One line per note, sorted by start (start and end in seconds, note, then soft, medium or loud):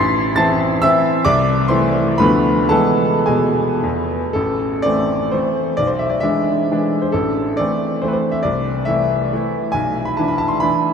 0.00 0.37 A1 medium
0.00 0.34 C6 loud
0.00 0.37 C7 loud
0.36 0.79 E3 medium
0.36 0.79 C4 medium
0.36 0.79 E4 medium
0.36 0.80 A5 medium
0.36 0.82 A6 loud
0.82 1.23 E3 medium
0.82 1.23 C4 medium
0.82 1.23 E4 medium
0.82 1.24 E5 medium
0.82 1.26 E6 loud
1.25 1.69 C2 medium
1.25 1.67 D5 medium
1.25 1.70 D6 loud
1.68 2.16 E3 medium
1.68 2.16 A3 medium
1.68 2.16 E4 medium
1.68 2.16 C5 medium
1.68 2.19 C6 medium
2.18 2.70 D2 medium
2.18 2.67 F3 medium
2.18 2.68 A3 medium
2.18 2.68 B3 medium
2.18 2.67 B4 medium
2.18 2.70 B5 loud
2.69 3.11 E3 medium
2.69 3.16 G#3 medium
2.69 3.17 B3 medium
2.69 3.23 A4 medium
2.69 3.27 A5 loud
3.26 3.67 B2 medium
3.26 4.05 G#4 soft
3.26 4.09 G#5 medium
3.84 4.20 E2 medium
4.33 4.82 A1 medium
4.33 4.83 A4 medium
4.82 5.30 E3 soft
4.82 5.30 A3 soft
4.82 5.30 C4 soft
4.82 5.32 D5 medium
5.32 5.73 E3 soft
5.32 5.73 A3 soft
5.32 5.74 C4 soft
5.32 5.76 C5 medium
5.77 6.22 B1 medium
5.77 5.88 D5 medium
5.87 5.99 C5 medium
5.99 6.11 E5 medium
6.10 6.22 D5 medium
6.20 6.65 E3 soft
6.20 6.65 G#3 soft
6.20 6.66 D4 soft
6.20 7.01 E5 medium
6.72 7.10 E3 soft
6.72 7.10 G#3 soft
6.72 7.11 D4 medium
7.02 7.13 C5 medium
7.12 7.57 A1 medium
7.12 7.58 A4 medium
7.57 7.99 E3 soft
7.57 7.99 A3 soft
7.57 7.99 C4 soft
7.57 8.02 D5 medium
8.02 8.40 E3 soft
8.02 8.40 A3 soft
8.02 8.41 C4 soft
8.02 8.08 C5 medium
8.08 8.14 B4 medium
8.13 8.33 C5 medium
8.32 8.43 E5 medium
8.43 8.87 C2 medium
8.43 8.87 D5 medium
8.85 9.27 E3 soft
8.85 9.27 A3 soft
8.85 9.28 E4 soft
8.85 9.52 E5 medium
9.33 9.71 E3 soft
9.33 9.71 A3 soft
9.33 9.71 E4 medium
9.72 10.16 B1 medium
9.72 10.05 G#5 medium
10.05 10.17 B5 medium
10.17 10.58 E3 soft
10.17 10.58 D4 soft
10.17 10.59 E4 soft
10.17 10.28 A5 medium
10.28 10.39 B5 medium
10.38 10.50 A5 medium
10.48 10.60 C6 medium
10.60 10.93 E3 soft
10.60 10.93 D4 soft
10.60 10.93 E4 soft
10.60 10.93 B5 medium